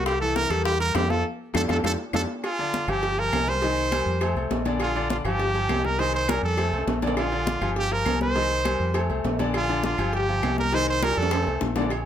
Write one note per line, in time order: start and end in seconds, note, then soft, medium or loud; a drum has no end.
0.00 0.45 C2 loud
0.00 0.15 G3 medium
0.00 0.16 G4 medium
0.00 0.16 A#4 medium
0.06 0.20 G4 loud
0.06 high bongo medium
0.06 high conga soft
0.06 high timbale loud
0.06 claves medium
0.21 0.45 E3 medium
0.21 0.46 E4 medium
0.21 0.37 A4 loud
0.21 0.46 E5 medium
0.21 high conga soft
0.36 0.52 A#4 loud
0.36 high bongo medium
0.36 high conga medium
0.36 high timbale medium
0.36 low timbale medium
0.50 0.92 E2 loud
0.50 0.75 G3 medium
0.50 0.75 G4 medium
0.50 0.65 A4 medium
0.50 0.75 A#4 medium
0.50 low conga medium
0.50 high timbale loud
0.50 claves medium
0.65 0.79 G4 loud
0.65 high bongo medium
0.65 high conga soft
0.80 1.05 G3 medium
0.80 1.05 G4 medium
0.80 0.97 A#4 loud
0.80 1.05 A#4 medium
0.80 high conga soft
0.80 high timbale medium
0.95 1.23 F2 loud
0.95 1.11 G4 medium
0.95 high bongo medium
0.95 low bongo medium
0.95 high conga medium
0.95 high timbale loud
0.95 low timbale medium
0.95 claves medium
1.10 1.22 F3 medium
1.10 1.22 F4 medium
1.10 1.25 A4 medium
1.10 1.22 F5 medium
1.10 high conga medium
1.54 1.66 F2 loud
1.54 1.63 F4 medium
1.54 1.64 G4 medium
1.54 1.63 A4 loud
1.54 1.62 A4 medium
1.54 low bongo loud
1.54 high conga medium
1.54 high timbale loud
1.54 claves loud
1.68 1.80 F2 loud
1.68 1.78 F4 loud
1.68 1.78 G4 medium
1.68 1.78 A4 loud
1.68 1.77 A4 medium
1.68 low bongo loud
1.68 high conga medium
1.68 high timbale loud
1.68 claves medium
1.83 1.95 F2 medium
1.83 1.93 F4 medium
1.83 1.93 G4 medium
1.83 1.93 A4 medium
1.83 1.92 A4 medium
1.83 low bongo loud
1.83 high conga loud
1.83 high timbale loud
1.83 claves medium
2.13 2.25 F2 medium
2.13 2.23 F4 loud
2.13 2.23 G4 medium
2.13 2.23 A4 medium
2.13 2.22 A4 loud
2.13 low bongo medium
2.13 high conga loud
2.13 high timbale loud
2.13 claves loud
2.44 2.91 F4 loud
2.44 cowbell loud
2.44 high conga soft
2.44 low agogo loud
2.44 claves medium
2.59 2.83 D3 medium
2.59 2.83 D4 medium
2.59 2.83 D5 medium
2.59 high conga soft
2.59 low agogo medium
2.73 cowbell medium
2.73 high conga loud
2.73 low timbale medium
2.88 3.29 G1 loud
2.88 3.13 F3 medium
2.88 3.13 F4 medium
2.88 3.13 G4 medium
2.88 3.21 G4 medium
2.88 low conga medium
2.88 low agogo loud
2.88 claves medium
3.03 cowbell loud
3.03 high conga soft
3.18 3.42 F3 medium
3.18 3.42 F4 medium
3.18 3.42 G4 medium
3.18 3.50 A#4 loud
3.18 high conga soft
3.18 low agogo medium
3.32 4.01 C2 medium
3.32 cowbell medium
3.32 high conga loud
3.32 low timbale loud
3.32 low agogo loud
3.32 claves medium
3.48 3.60 G3 medium
3.48 3.60 G4 medium
3.48 3.60 A#4 medium
3.48 4.37 C5 loud
3.48 high conga medium
3.62 3.87 D#3 medium
3.62 3.87 D#4 medium
3.62 3.87 D#5 medium
3.62 cowbell loud
3.62 high conga soft
3.62 low agogo medium
3.77 high conga soft
3.77 low agogo medium
3.91 4.16 G3 medium
3.91 4.16 G4 medium
3.91 4.16 A#4 medium
3.91 cowbell medium
3.91 high conga medium
3.91 low timbale medium
3.91 low agogo loud
3.91 claves medium
4.06 4.34 F2 loud
4.06 high conga soft
4.21 4.34 A3 medium
4.21 4.34 A4 medium
4.21 4.34 C5 medium
4.21 cowbell loud
4.21 high conga soft
4.21 low agogo loud
4.21 claves medium
4.35 4.49 C2 medium
4.35 4.61 A3 medium
4.35 4.61 A4 medium
4.35 4.61 C5 medium
4.35 high conga soft
4.35 low agogo medium
4.51 5.19 A#1 medium
4.51 cowbell medium
4.51 high conga loud
4.51 low timbale medium
4.65 4.90 D3 medium
4.65 4.90 D4 medium
4.65 4.90 D5 medium
4.65 cowbell medium
4.65 high conga medium
4.65 low agogo medium
4.80 5.09 F4 medium
4.80 cowbell loud
4.80 high conga soft
4.80 low agogo loud
4.80 claves medium
4.95 5.20 D3 medium
4.95 5.20 D4 loud
4.95 5.20 D5 medium
4.95 high conga soft
4.95 low agogo medium
5.10 5.18 F4 medium
5.10 cowbell medium
5.10 high conga medium
5.10 low timbale medium
5.25 5.66 G1 loud
5.25 5.49 F3 medium
5.25 5.50 F4 medium
5.25 5.50 G4 medium
5.25 5.87 G4 loud
5.25 low conga medium
5.25 low agogo loud
5.25 claves medium
5.39 cowbell loud
5.39 high conga soft
5.54 5.79 F3 medium
5.54 5.79 F4 medium
5.54 5.79 G4 medium
5.54 high conga soft
5.54 low agogo medium
5.69 6.38 C2 medium
5.69 cowbell medium
5.69 high conga medium
5.69 low timbale medium
5.69 low agogo loud
5.69 claves medium
5.84 5.96 G3 medium
5.84 5.96 G4 medium
5.84 5.97 A#4 medium
5.84 6.01 A#4 loud
5.84 high conga medium
5.98 6.23 D#3 medium
5.98 6.23 D#4 medium
5.98 6.14 C5 loud
5.98 6.23 D#5 medium
5.98 cowbell loud
5.98 high conga soft
5.98 low agogo medium
6.14 6.31 C5 loud
6.14 high conga soft
6.14 low agogo medium
6.28 6.53 G3 medium
6.28 6.53 G4 medium
6.28 6.53 A#4 medium
6.28 6.43 A#4 medium
6.28 cowbell medium
6.28 high conga loud
6.28 high timbale medium
6.28 low agogo loud
6.28 claves medium
6.42 6.70 F2 loud
6.42 6.85 A4 medium
6.42 high conga soft
6.57 6.70 A3 medium
6.57 6.70 A4 medium
6.57 6.70 C5 medium
6.57 cowbell loud
6.57 high conga soft
6.57 low agogo loud
6.57 claves medium
6.72 6.86 C2 medium
6.72 6.97 A3 medium
6.72 6.97 A4 medium
6.72 6.98 C5 medium
6.72 high conga soft
6.72 low agogo medium
6.78 low timbale medium
6.87 7.56 A#1 medium
6.87 cowbell medium
6.87 high conga loud
6.87 low timbale medium
7.02 7.27 D3 medium
7.02 7.27 D4 medium
7.02 7.27 D5 medium
7.02 cowbell medium
7.02 high conga medium
7.02 low agogo medium
7.07 low timbale loud
7.17 7.73 F4 medium
7.17 cowbell loud
7.17 high conga soft
7.17 low agogo loud
7.17 claves medium
7.32 7.56 D3 medium
7.32 7.56 D4 medium
7.32 7.57 D5 medium
7.32 high conga soft
7.32 low agogo medium
7.47 cowbell medium
7.47 high conga loud
7.47 low timbale medium
7.61 8.03 G1 loud
7.61 7.86 F3 medium
7.61 7.86 F4 medium
7.61 7.86 G4 medium
7.61 low conga medium
7.61 low agogo loud
7.61 claves medium
7.76 7.94 G4 loud
7.76 cowbell loud
7.76 high conga soft
7.91 8.15 F3 medium
7.91 8.16 F4 medium
7.91 8.16 G4 medium
7.91 8.22 A#4 loud
7.91 high conga soft
7.91 low agogo medium
8.06 8.75 C2 loud
8.06 cowbell medium
8.06 high conga medium
8.06 low timbale loud
8.06 low agogo loud
8.06 claves medium
8.21 8.33 G3 medium
8.21 8.33 G4 medium
8.21 8.33 A#4 medium
8.21 9.06 C5 loud
8.21 high conga medium
8.35 8.60 D#3 medium
8.35 8.60 D#4 medium
8.35 8.60 D#5 medium
8.35 cowbell loud
8.35 high conga soft
8.35 low agogo medium
8.51 high conga soft
8.51 low agogo medium
8.65 8.89 G3 medium
8.65 8.89 G4 medium
8.65 8.90 A#4 medium
8.65 cowbell medium
8.65 high conga medium
8.65 low timbale medium
8.65 low agogo loud
8.65 claves medium
8.80 9.07 F2 loud
8.80 high conga soft
8.94 9.07 A3 medium
8.94 9.07 A4 medium
8.94 9.07 C5 medium
8.94 cowbell loud
8.94 high conga soft
8.94 low agogo loud
8.94 claves medium
9.09 9.23 C2 medium
9.09 9.34 A3 medium
9.09 9.34 A4 medium
9.09 9.35 C5 medium
9.09 high conga soft
9.09 low agogo medium
9.24 9.93 A#1 medium
9.24 cowbell medium
9.24 high conga loud
9.24 low timbale loud
9.39 9.64 D3 medium
9.39 9.64 D4 medium
9.39 9.64 D5 medium
9.39 cowbell medium
9.39 high conga medium
9.39 low agogo loud
9.54 9.83 F4 medium
9.54 cowbell loud
9.54 high conga soft
9.54 low agogo loud
9.54 claves medium
9.69 9.93 D3 medium
9.69 9.94 D4 loud
9.69 9.94 D5 loud
9.69 high conga soft
9.69 low agogo medium
9.84 10.12 F4 medium
9.84 cowbell medium
9.84 high conga medium
9.84 low timbale medium
9.98 10.40 G1 loud
9.98 10.23 F3 medium
9.98 10.24 F4 medium
9.98 10.24 G4 medium
9.98 low conga medium
9.98 low agogo loud
9.98 claves medium
10.13 10.55 G4 loud
10.13 cowbell loud
10.13 high conga soft
10.29 10.53 F3 medium
10.29 10.53 F4 medium
10.29 10.53 G4 medium
10.29 high conga soft
10.29 low agogo medium
10.43 11.11 C2 loud
10.43 cowbell medium
10.43 high conga medium
10.43 low timbale loud
10.43 low agogo loud
10.43 claves medium
10.58 10.70 G3 medium
10.58 10.70 G4 medium
10.58 10.71 A#4 medium
10.58 10.76 A#4 loud
10.58 high conga medium
10.72 10.97 D#3 medium
10.72 10.98 D#4 medium
10.72 10.88 C5 loud
10.72 10.98 D#5 medium
10.72 cowbell loud
10.72 high conga soft
10.72 low agogo loud
10.88 11.05 C5 loud
10.88 high conga soft
10.88 low agogo medium
11.02 11.27 G3 medium
11.02 11.27 G4 medium
11.02 11.19 A#4 loud
11.02 11.27 A#4 medium
11.02 cowbell medium
11.02 high conga loud
11.02 high timbale loud
11.02 low agogo loud
11.02 claves medium
11.13 high timbale medium
11.17 11.45 F2 loud
11.17 11.62 A4 medium
11.17 high conga soft
11.23 low timbale loud
11.31 11.44 A3 medium
11.31 11.45 A4 medium
11.31 11.45 C5 medium
11.31 cowbell loud
11.31 high bongo medium
11.31 high conga soft
11.31 low timbale loud
11.31 low agogo loud
11.31 claves medium
11.43 low timbale medium
11.47 11.60 C2 medium
11.47 11.71 A3 medium
11.47 11.71 A4 medium
11.47 11.72 C5 medium
11.47 high conga soft
11.47 low agogo medium
11.61 12.05 A#1 medium
11.61 cowbell medium
11.61 low bongo medium
11.61 high conga medium
11.76 11.88 D3 medium
11.76 11.89 D4 medium
11.76 11.89 D5 medium
11.76 cowbell medium
11.76 low bongo medium
11.76 high conga medium
11.76 low agogo medium
11.82 low timbale medium
11.90 cowbell loud
11.90 high conga soft
11.90 low agogo loud
11.90 claves medium